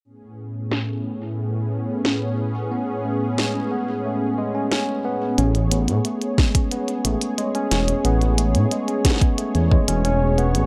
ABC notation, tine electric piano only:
X:1
M:4/4
L:1/16
Q:1/4=90
K:A
V:1 name="Tine electric piano"
z16 | B, z A, z G, C B, z A, z G, C C z B, z | C z B, z A, z G, C B, z A, z G, C C z | B, z A, z G, C B, z A, z G, C C z B, z |]